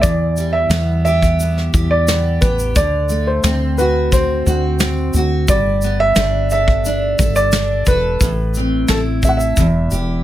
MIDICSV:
0, 0, Header, 1, 5, 480
1, 0, Start_track
1, 0, Key_signature, 1, "minor"
1, 0, Tempo, 681818
1, 25, Time_signature, 4, 2, 24, 8
1, 7205, End_track
2, 0, Start_track
2, 0, Title_t, "Upright piano"
2, 0, Program_c, 0, 0
2, 10, Note_on_c, 0, 74, 96
2, 371, Note_on_c, 0, 76, 105
2, 388, Note_off_c, 0, 74, 0
2, 711, Note_off_c, 0, 76, 0
2, 738, Note_on_c, 0, 76, 113
2, 1342, Note_on_c, 0, 74, 95
2, 1358, Note_off_c, 0, 76, 0
2, 1698, Note_on_c, 0, 71, 83
2, 1713, Note_off_c, 0, 74, 0
2, 1947, Note_off_c, 0, 71, 0
2, 1947, Note_on_c, 0, 74, 105
2, 2303, Note_on_c, 0, 72, 85
2, 2315, Note_off_c, 0, 74, 0
2, 2661, Note_on_c, 0, 71, 82
2, 2673, Note_off_c, 0, 72, 0
2, 2884, Note_off_c, 0, 71, 0
2, 2907, Note_on_c, 0, 72, 82
2, 3596, Note_off_c, 0, 72, 0
2, 3867, Note_on_c, 0, 74, 100
2, 4199, Note_off_c, 0, 74, 0
2, 4224, Note_on_c, 0, 76, 122
2, 4557, Note_off_c, 0, 76, 0
2, 4589, Note_on_c, 0, 76, 106
2, 5180, Note_on_c, 0, 74, 111
2, 5203, Note_off_c, 0, 76, 0
2, 5545, Note_on_c, 0, 71, 94
2, 5551, Note_off_c, 0, 74, 0
2, 6263, Note_on_c, 0, 69, 87
2, 6285, Note_off_c, 0, 71, 0
2, 6317, Note_off_c, 0, 69, 0
2, 6509, Note_on_c, 0, 76, 83
2, 6539, Note_on_c, 0, 78, 70
2, 6551, Note_off_c, 0, 76, 0
2, 6594, Note_off_c, 0, 78, 0
2, 6598, Note_on_c, 0, 76, 86
2, 7193, Note_off_c, 0, 76, 0
2, 7205, End_track
3, 0, Start_track
3, 0, Title_t, "Steel-string acoustic guitar"
3, 0, Program_c, 1, 25
3, 0, Note_on_c, 1, 60, 58
3, 0, Note_on_c, 1, 64, 63
3, 0, Note_on_c, 1, 69, 63
3, 20, Note_on_c, 1, 40, 80
3, 72, Note_off_c, 1, 60, 0
3, 73, Note_off_c, 1, 69, 0
3, 266, Note_on_c, 1, 55, 60
3, 494, Note_off_c, 1, 64, 0
3, 497, Note_on_c, 1, 59, 61
3, 740, Note_on_c, 1, 67, 71
3, 978, Note_off_c, 1, 59, 0
3, 986, Note_on_c, 1, 59, 64
3, 1217, Note_off_c, 1, 67, 0
3, 1226, Note_on_c, 1, 67, 63
3, 1464, Note_off_c, 1, 59, 0
3, 1474, Note_on_c, 1, 59, 59
3, 1698, Note_off_c, 1, 67, 0
3, 1707, Note_on_c, 1, 67, 66
3, 1940, Note_off_c, 1, 40, 0
3, 1942, Note_on_c, 1, 50, 90
3, 1991, Note_off_c, 1, 55, 0
3, 1992, Note_off_c, 1, 67, 0
3, 1996, Note_off_c, 1, 59, 0
3, 2177, Note_on_c, 1, 57, 56
3, 2423, Note_on_c, 1, 60, 62
3, 2668, Note_on_c, 1, 66, 71
3, 2899, Note_off_c, 1, 60, 0
3, 2907, Note_on_c, 1, 60, 60
3, 3140, Note_off_c, 1, 66, 0
3, 3148, Note_on_c, 1, 66, 65
3, 3378, Note_off_c, 1, 60, 0
3, 3386, Note_on_c, 1, 60, 60
3, 3624, Note_off_c, 1, 66, 0
3, 3634, Note_on_c, 1, 66, 71
3, 3862, Note_off_c, 1, 50, 0
3, 3865, Note_on_c, 1, 55, 85
3, 3911, Note_off_c, 1, 60, 0
3, 3915, Note_off_c, 1, 66, 0
3, 4109, Note_off_c, 1, 57, 0
3, 4112, Note_on_c, 1, 59, 62
3, 4350, Note_on_c, 1, 62, 62
3, 4594, Note_on_c, 1, 69, 66
3, 4821, Note_off_c, 1, 62, 0
3, 4830, Note_on_c, 1, 62, 66
3, 5065, Note_off_c, 1, 69, 0
3, 5068, Note_on_c, 1, 69, 65
3, 5303, Note_off_c, 1, 62, 0
3, 5311, Note_on_c, 1, 62, 63
3, 5541, Note_off_c, 1, 69, 0
3, 5549, Note_on_c, 1, 69, 73
3, 5783, Note_off_c, 1, 55, 0
3, 5786, Note_on_c, 1, 45, 86
3, 5833, Note_off_c, 1, 69, 0
3, 5834, Note_off_c, 1, 62, 0
3, 5835, Note_off_c, 1, 59, 0
3, 6033, Note_on_c, 1, 60, 63
3, 6276, Note_on_c, 1, 64, 65
3, 6511, Note_on_c, 1, 69, 66
3, 6744, Note_off_c, 1, 45, 0
3, 6746, Note_on_c, 1, 40, 83
3, 6795, Note_off_c, 1, 69, 0
3, 6796, Note_off_c, 1, 60, 0
3, 6981, Note_on_c, 1, 67, 64
3, 7205, Note_off_c, 1, 40, 0
3, 7205, Note_off_c, 1, 64, 0
3, 7205, Note_off_c, 1, 67, 0
3, 7205, End_track
4, 0, Start_track
4, 0, Title_t, "Fretless electric bass"
4, 0, Program_c, 2, 35
4, 22, Note_on_c, 2, 40, 98
4, 474, Note_off_c, 2, 40, 0
4, 490, Note_on_c, 2, 40, 92
4, 1188, Note_off_c, 2, 40, 0
4, 1224, Note_on_c, 2, 40, 97
4, 1675, Note_off_c, 2, 40, 0
4, 1701, Note_on_c, 2, 33, 92
4, 1922, Note_off_c, 2, 33, 0
4, 1943, Note_on_c, 2, 38, 91
4, 2394, Note_off_c, 2, 38, 0
4, 2418, Note_on_c, 2, 38, 97
4, 3111, Note_off_c, 2, 38, 0
4, 3143, Note_on_c, 2, 38, 108
4, 3593, Note_off_c, 2, 38, 0
4, 3618, Note_on_c, 2, 38, 96
4, 3840, Note_off_c, 2, 38, 0
4, 3862, Note_on_c, 2, 31, 99
4, 4313, Note_off_c, 2, 31, 0
4, 4337, Note_on_c, 2, 31, 93
4, 5031, Note_off_c, 2, 31, 0
4, 5063, Note_on_c, 2, 31, 103
4, 5514, Note_off_c, 2, 31, 0
4, 5540, Note_on_c, 2, 28, 89
4, 5761, Note_off_c, 2, 28, 0
4, 5778, Note_on_c, 2, 33, 94
4, 6232, Note_off_c, 2, 33, 0
4, 6259, Note_on_c, 2, 33, 111
4, 6713, Note_off_c, 2, 33, 0
4, 6737, Note_on_c, 2, 28, 102
4, 6961, Note_off_c, 2, 28, 0
4, 6979, Note_on_c, 2, 28, 92
4, 7205, Note_off_c, 2, 28, 0
4, 7205, End_track
5, 0, Start_track
5, 0, Title_t, "Drums"
5, 23, Note_on_c, 9, 36, 110
5, 24, Note_on_c, 9, 82, 81
5, 93, Note_off_c, 9, 36, 0
5, 94, Note_off_c, 9, 82, 0
5, 259, Note_on_c, 9, 82, 50
5, 329, Note_off_c, 9, 82, 0
5, 497, Note_on_c, 9, 38, 116
5, 497, Note_on_c, 9, 82, 76
5, 567, Note_off_c, 9, 82, 0
5, 568, Note_off_c, 9, 38, 0
5, 745, Note_on_c, 9, 82, 48
5, 815, Note_off_c, 9, 82, 0
5, 862, Note_on_c, 9, 36, 84
5, 864, Note_on_c, 9, 82, 47
5, 933, Note_off_c, 9, 36, 0
5, 934, Note_off_c, 9, 82, 0
5, 983, Note_on_c, 9, 82, 67
5, 1054, Note_off_c, 9, 82, 0
5, 1109, Note_on_c, 9, 38, 38
5, 1179, Note_off_c, 9, 38, 0
5, 1224, Note_on_c, 9, 36, 90
5, 1224, Note_on_c, 9, 82, 56
5, 1294, Note_off_c, 9, 36, 0
5, 1295, Note_off_c, 9, 82, 0
5, 1463, Note_on_c, 9, 82, 76
5, 1466, Note_on_c, 9, 38, 103
5, 1533, Note_off_c, 9, 82, 0
5, 1536, Note_off_c, 9, 38, 0
5, 1701, Note_on_c, 9, 82, 57
5, 1703, Note_on_c, 9, 36, 92
5, 1772, Note_off_c, 9, 82, 0
5, 1774, Note_off_c, 9, 36, 0
5, 1823, Note_on_c, 9, 82, 52
5, 1894, Note_off_c, 9, 82, 0
5, 1942, Note_on_c, 9, 36, 117
5, 1942, Note_on_c, 9, 82, 82
5, 2012, Note_off_c, 9, 36, 0
5, 2012, Note_off_c, 9, 82, 0
5, 2176, Note_on_c, 9, 82, 51
5, 2246, Note_off_c, 9, 82, 0
5, 2419, Note_on_c, 9, 82, 75
5, 2420, Note_on_c, 9, 38, 123
5, 2489, Note_off_c, 9, 82, 0
5, 2490, Note_off_c, 9, 38, 0
5, 2662, Note_on_c, 9, 82, 47
5, 2733, Note_off_c, 9, 82, 0
5, 2902, Note_on_c, 9, 36, 91
5, 2903, Note_on_c, 9, 82, 72
5, 2972, Note_off_c, 9, 36, 0
5, 2973, Note_off_c, 9, 82, 0
5, 3145, Note_on_c, 9, 82, 53
5, 3216, Note_off_c, 9, 82, 0
5, 3377, Note_on_c, 9, 82, 70
5, 3380, Note_on_c, 9, 38, 104
5, 3447, Note_off_c, 9, 82, 0
5, 3450, Note_off_c, 9, 38, 0
5, 3616, Note_on_c, 9, 82, 57
5, 3686, Note_off_c, 9, 82, 0
5, 3859, Note_on_c, 9, 82, 80
5, 3860, Note_on_c, 9, 36, 119
5, 3929, Note_off_c, 9, 82, 0
5, 3931, Note_off_c, 9, 36, 0
5, 4095, Note_on_c, 9, 82, 50
5, 4165, Note_off_c, 9, 82, 0
5, 4334, Note_on_c, 9, 82, 74
5, 4335, Note_on_c, 9, 38, 127
5, 4405, Note_off_c, 9, 38, 0
5, 4405, Note_off_c, 9, 82, 0
5, 4577, Note_on_c, 9, 82, 47
5, 4647, Note_off_c, 9, 82, 0
5, 4701, Note_on_c, 9, 36, 92
5, 4771, Note_off_c, 9, 36, 0
5, 4822, Note_on_c, 9, 82, 72
5, 4892, Note_off_c, 9, 82, 0
5, 5061, Note_on_c, 9, 82, 55
5, 5062, Note_on_c, 9, 36, 93
5, 5131, Note_off_c, 9, 82, 0
5, 5132, Note_off_c, 9, 36, 0
5, 5180, Note_on_c, 9, 82, 55
5, 5250, Note_off_c, 9, 82, 0
5, 5295, Note_on_c, 9, 82, 71
5, 5298, Note_on_c, 9, 38, 102
5, 5365, Note_off_c, 9, 82, 0
5, 5368, Note_off_c, 9, 38, 0
5, 5532, Note_on_c, 9, 82, 58
5, 5538, Note_on_c, 9, 36, 91
5, 5603, Note_off_c, 9, 82, 0
5, 5608, Note_off_c, 9, 36, 0
5, 5777, Note_on_c, 9, 36, 116
5, 5777, Note_on_c, 9, 82, 80
5, 5847, Note_off_c, 9, 82, 0
5, 5848, Note_off_c, 9, 36, 0
5, 6014, Note_on_c, 9, 82, 53
5, 6084, Note_off_c, 9, 82, 0
5, 6253, Note_on_c, 9, 82, 69
5, 6254, Note_on_c, 9, 38, 125
5, 6324, Note_off_c, 9, 38, 0
5, 6324, Note_off_c, 9, 82, 0
5, 6495, Note_on_c, 9, 82, 47
5, 6497, Note_on_c, 9, 36, 81
5, 6566, Note_off_c, 9, 82, 0
5, 6567, Note_off_c, 9, 36, 0
5, 6618, Note_on_c, 9, 82, 45
5, 6688, Note_off_c, 9, 82, 0
5, 6735, Note_on_c, 9, 82, 73
5, 6737, Note_on_c, 9, 36, 80
5, 6805, Note_off_c, 9, 82, 0
5, 6807, Note_off_c, 9, 36, 0
5, 6977, Note_on_c, 9, 82, 50
5, 7047, Note_off_c, 9, 82, 0
5, 7205, End_track
0, 0, End_of_file